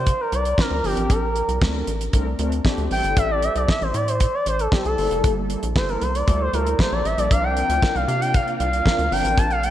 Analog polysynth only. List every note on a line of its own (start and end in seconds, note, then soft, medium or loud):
0.58 0.72 F3 medium
0.58 0.72 C4 medium
0.58 0.72 D4 medium
0.58 0.73 A#4 medium
0.83 1.10 F3 medium
0.83 1.10 C4 medium
0.83 1.10 D4 medium
0.83 1.10 A#4 loud
1.61 1.91 A3 medium
1.61 1.91 C4 medium
1.61 1.91 D4 medium
1.61 1.91 A#4 medium
2.13 2.27 A3 medium
2.13 2.27 C4 medium
2.13 2.28 D4 medium
2.13 2.28 A#4 loud
2.39 2.53 A3 medium
2.39 2.53 C4 medium
2.39 2.53 D4 medium
2.39 2.54 A#4 medium
2.64 2.87 A3 medium
2.64 2.87 C4 medium
2.64 2.87 D4 medium
2.64 2.87 G4 loud
2.91 3.74 G3 medium
2.91 3.74 C4 medium
2.91 3.74 E4 medium
2.91 3.74 A4 medium
4.72 4.86 G3 medium
4.72 4.86 C4 medium
4.72 4.86 E4 medium
4.72 4.87 A4 medium
4.98 5.60 G3 medium
4.98 5.60 A#3 medium
4.98 5.60 E4 medium
4.98 5.60 A4 medium
5.75 6.05 G3 medium
5.75 6.05 A#3 medium
5.75 6.05 E4 medium
5.75 6.05 A4 medium
6.27 6.41 G3 medium
6.27 6.42 A#3 medium
6.27 6.42 E4 medium
6.27 6.42 A4 medium
6.53 6.67 G3 medium
6.53 6.67 A#3 medium
6.53 6.68 E4 medium
6.53 6.68 A4 medium
6.79 7.01 G3 medium
6.79 7.01 A#3 medium
6.79 7.01 E4 medium
6.79 7.01 A4 medium
7.18 7.25 G3 medium
7.18 7.25 A#3 medium
7.18 7.25 E4 medium
7.18 7.25 A4 medium
7.31 7.89 F3 medium
7.31 7.89 C4 medium
7.31 7.90 D4 medium
7.31 7.90 A#4 medium
8.86 9.00 F3 medium
8.86 9.00 C4 medium
8.86 9.00 D4 medium
8.86 9.00 A#4 medium
9.11 9.38 F3 medium
9.11 9.38 C4 medium
9.11 9.38 D4 medium
9.11 9.38 A#4 medium